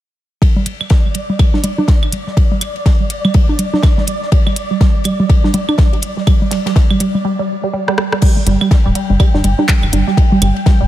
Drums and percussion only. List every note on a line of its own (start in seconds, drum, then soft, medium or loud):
0.42 kick loud
0.42 ride medium
0.56 low conga medium
0.66 closed hi-hat medium
0.66 ride medium
0.81 claves medium
0.90 kick loud
0.90 snare loud
0.90 ride medium
1.14 closed hi-hat medium
1.14 ride medium
1.30 low conga medium
1.39 kick loud
1.39 ride medium
1.39 claves medium
1.54 snare soft
1.54 high conga medium
1.64 closed hi-hat medium
1.64 ride medium
1.64 low conga medium
1.78 high conga medium
1.88 kick loud
1.88 snare loud
1.88 ride medium
2.03 ride soft
2.03 claves medium
2.12 closed hi-hat medium
2.12 ride medium
2.27 snare soft
2.37 kick loud
2.37 ride medium
2.51 low conga medium
2.61 closed hi-hat medium
2.61 ride medium
2.61 claves medium
2.76 ride soft
2.86 kick loud
2.86 snare loud
2.86 ride medium
3.10 closed hi-hat medium
3.10 ride medium
3.25 low conga medium
3.25 claves medium
3.34 kick loud
3.34 ride medium
3.49 high conga medium
3.59 closed hi-hat medium
3.59 ride medium
3.74 snare soft
3.74 high conga medium
3.83 kick loud
3.83 snare loud
3.83 ride medium
3.83 claves medium
3.98 snare soft
3.98 low conga medium
4.07 closed hi-hat medium
4.07 ride medium
4.22 snare soft
4.32 kick loud
4.32 ride medium
4.47 low conga medium
4.47 claves medium
4.56 closed hi-hat medium
4.56 ride medium
4.81 kick loud
4.81 snare loud
4.81 ride medium
5.04 closed hi-hat medium
5.04 ride medium
5.04 claves medium
5.20 low conga medium
5.29 kick loud
5.29 ride medium
5.44 snare medium
5.44 high conga medium
5.54 closed hi-hat medium
5.54 ride medium
5.54 low conga medium
5.69 high conga medium
5.69 claves medium
5.78 kick loud
5.78 snare loud
5.78 ride medium
5.93 ride soft
6.02 closed hi-hat medium
6.02 ride medium
6.18 snare soft
6.27 kick loud
6.27 ride loud
6.27 claves medium
6.42 low conga medium
6.51 snare medium
6.51 closed hi-hat medium
6.51 ride medium
6.66 snare loud
6.66 ride medium
6.76 kick loud
6.76 snare loud
6.76 ride medium
6.90 claves medium
7.00 closed hi-hat medium
7.00 ride medium
7.15 low conga medium
7.88 cross-stick medium
7.98 cross-stick medium
8.12 cross-stick medium
8.22 kick loud
8.22 ride medium
8.22 crash medium
8.37 low conga medium
8.47 closed hi-hat medium
8.47 ride medium
8.61 claves medium
8.71 kick loud
8.71 snare loud
8.71 ride medium
8.95 closed hi-hat medium
8.95 ride medium
9.10 low conga medium
9.20 kick loud
9.20 ride medium
9.20 claves medium
9.34 snare soft
9.34 high conga medium
9.44 closed hi-hat medium
9.44 ride medium
9.44 low conga medium
9.59 high conga medium
9.69 kick loud
9.69 snare loud
9.69 clap loud
9.69 ride medium
9.82 ride soft
9.82 claves medium
9.92 closed hi-hat medium
9.92 ride medium
9.92 high conga medium
10.08 snare soft
10.17 kick loud
10.17 ride medium
10.32 low conga medium
10.42 closed hi-hat medium
10.42 ride medium
10.42 claves medium
10.56 ride soft
10.66 kick loud
10.66 snare loud
10.66 ride medium